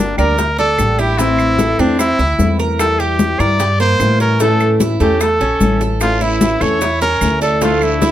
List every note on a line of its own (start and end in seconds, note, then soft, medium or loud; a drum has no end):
0.00 0.12 G1 medium
0.00 0.17 D3 medium
0.00 0.18 G3 medium
0.00 0.18 A#3 medium
0.00 0.17 D4 medium
0.00 0.18 D4 medium
0.00 0.17 G4 medium
0.00 0.17 A#4 medium
0.18 0.75 D2 medium
0.18 0.37 G3 medium
0.18 0.38 A#3 medium
0.18 0.38 D4 medium
0.18 0.37 G4 medium
0.18 0.56 A#4 medium
0.18 0.38 D5 medium
0.18 high bongo soft
0.18 high conga soft
0.18 claves medium
0.18 maracas soft
0.38 0.58 A#4 medium
0.38 muted steel-string acoustic guitar stroke medium
0.38 high bongo medium
0.38 high conga soft
0.38 maracas medium
0.59 0.98 D4 medium
0.59 1.01 A4 loud
0.59 high bongo soft
0.59 high conga soft
0.59 maracas soft
0.78 1.73 A1 medium
0.78 1.18 G3 soft
0.78 1.18 A#3 soft
0.78 1.18 D4 soft
0.78 1.19 G4 medium
0.78 high bongo soft
0.78 low bongo medium
0.78 high conga soft
0.78 claves medium
0.78 maracas medium
0.99 1.18 E4 medium
0.99 1.20 G4 medium
0.99 high bongo soft
0.99 maracas soft
1.18 1.99 E3 medium
1.18 1.78 A3 medium
1.18 1.58 C4 medium
1.18 1.79 C4 medium
1.18 1.81 E4 loud
1.18 1.78 E4 medium
1.18 high bongo medium
1.18 high conga soft
1.18 maracas medium
1.39 high conga soft
1.39 claves medium
1.39 maracas soft
1.59 1.79 A4 medium
1.59 high bongo medium
1.59 high conga medium
1.59 maracas medium
1.79 2.16 E2 medium
1.79 1.99 A3 medium
1.79 2.18 C4 medium
1.79 1.99 C4 medium
1.79 1.99 D4 medium
1.79 1.98 E4 medium
1.79 high bongo soft
1.79 maracas soft
1.99 2.56 E4 loud
1.99 muted steel-string acoustic guitar stroke medium
1.99 high bongo medium
1.99 high conga soft
1.99 claves medium
1.99 maracas medium
2.19 2.38 D2 medium
2.19 2.58 E4 medium
2.19 high bongo soft
2.19 high conga soft
2.19 maracas soft
2.39 3.34 E2 medium
2.39 2.78 E3 soft
2.39 2.79 A3 medium
2.39 2.79 C4 soft
2.39 2.79 E4 medium
2.39 high bongo soft
2.39 low bongo medium
2.39 high conga medium
2.39 maracas medium
2.59 2.98 A#4 medium
2.59 high bongo soft
2.59 maracas soft
2.79 3.59 E3 medium
2.79 3.39 G3 medium
2.79 3.39 E4 medium
2.79 3.01 A4 loud
2.79 high bongo medium
2.79 high conga soft
2.79 claves medium
2.79 maracas medium
3.00 3.41 G4 medium
3.00 3.39 G4 medium
3.00 high conga soft
3.00 maracas soft
3.19 high bongo medium
3.19 high conga medium
3.19 maracas medium
3.39 3.96 G2 medium
3.39 3.59 G3 medium
3.39 3.59 E4 medium
3.39 3.59 A#4 medium
3.39 3.80 D5 loud
3.39 high bongo soft
3.39 high conga soft
3.39 claves medium
3.39 maracas soft
3.60 3.79 G4 medium
3.60 muted steel-string acoustic guitar stroke medium
3.60 high bongo medium
3.60 high conga soft
3.60 maracas medium
3.80 4.19 A#3 medium
3.80 4.18 C5 loud
3.80 high bongo soft
3.80 high conga soft
3.80 maracas soft
4.00 4.94 A2 medium
4.00 4.39 E3 soft
4.00 4.40 G3 soft
4.00 4.40 E4 soft
4.00 high bongo soft
4.00 low bongo medium
4.00 high conga soft
4.00 claves medium
4.00 maracas medium
4.20 4.40 C#4 medium
4.20 4.42 A#4 medium
4.20 high bongo soft
4.20 maracas soft
4.40 5.20 E3 medium
4.40 4.79 A3 medium
4.40 5.02 A3 medium
4.40 5.01 C#4 medium
4.40 5.00 E4 medium
4.40 4.74 A4 medium
4.40 high bongo medium
4.40 high conga soft
4.40 maracas medium
4.60 high conga soft
4.60 claves medium
4.60 maracas soft
4.80 5.00 E4 medium
4.80 high bongo medium
4.80 high conga medium
4.80 maracas medium
5.00 5.38 E2 medium
5.00 5.39 A3 medium
5.00 5.20 A3 medium
5.00 5.20 C#4 medium
5.00 5.20 E4 medium
5.00 5.23 G4 medium
5.00 high bongo soft
5.00 maracas soft
5.20 5.81 A4 loud
5.20 muted steel-string acoustic guitar stroke medium
5.20 high bongo medium
5.20 high conga soft
5.20 claves medium
5.20 maracas medium
5.40 5.59 A#1 medium
5.40 5.80 C#4 medium
5.40 high bongo soft
5.40 high conga soft
5.40 maracas soft
5.60 6.55 A1 medium
5.60 6.00 E3 soft
5.60 6.00 A3 soft
5.60 6.01 C#4 soft
5.60 6.01 E4 soft
5.60 high bongo soft
5.60 low bongo medium
5.60 high conga medium
5.60 maracas medium
5.81 6.20 A4 medium
5.81 high bongo soft
5.81 maracas soft
6.01 6.81 E3 medium
6.01 6.62 A3 medium
6.01 6.60 C#4 medium
6.01 6.60 E4 medium
6.01 6.23 F4 loud
6.01 high bongo medium
6.01 high conga soft
6.01 long guiro medium
6.01 claves medium
6.01 maracas medium
6.21 6.60 E4 medium
6.21 6.63 E4 medium
6.21 high conga soft
6.21 maracas soft
6.41 high bongo medium
6.41 high conga medium
6.41 short guiro medium
6.41 maracas medium
6.60 7.17 E2 medium
6.60 6.80 A3 medium
6.60 6.80 C#4 medium
6.60 6.80 E4 medium
6.60 6.81 A4 medium
6.60 7.01 C#5 loud
6.60 high bongo soft
6.60 high conga soft
6.60 short guiro medium
6.60 claves medium
6.60 maracas soft
6.81 7.01 E4 medium
6.81 muted steel-string acoustic guitar stroke medium
6.81 high bongo medium
6.81 high conga soft
6.81 long guiro medium
6.81 maracas medium
7.01 7.41 C#4 medium
7.01 7.39 A#4 medium
7.01 high bongo soft
7.01 high conga soft
7.01 maracas soft
7.21 8.11 D2 medium
7.21 7.61 E3 soft
7.21 7.61 A3 soft
7.21 7.61 C#4 soft
7.21 7.62 E4 medium
7.21 high bongo soft
7.21 low bongo medium
7.21 high conga soft
7.21 short guiro medium
7.21 claves medium
7.21 maracas medium
7.41 7.61 D4 medium
7.41 7.64 A4 medium
7.41 high bongo soft
7.41 short guiro medium
7.41 maracas soft
7.61 8.11 D3 medium
7.61 8.11 F3 medium
7.61 8.01 A3 medium
7.61 8.11 A3 medium
7.61 8.11 D4 medium
7.61 8.11 E4 medium
7.61 7.85 F4 loud
7.61 high bongo medium
7.61 high conga soft
7.61 long guiro medium
7.61 maracas medium
7.81 8.11 E4 medium
7.81 high conga soft
7.81 claves medium
7.81 maracas soft
8.02 8.11 E4 medium
8.02 high bongo medium
8.02 high conga medium
8.02 short guiro medium
8.02 maracas medium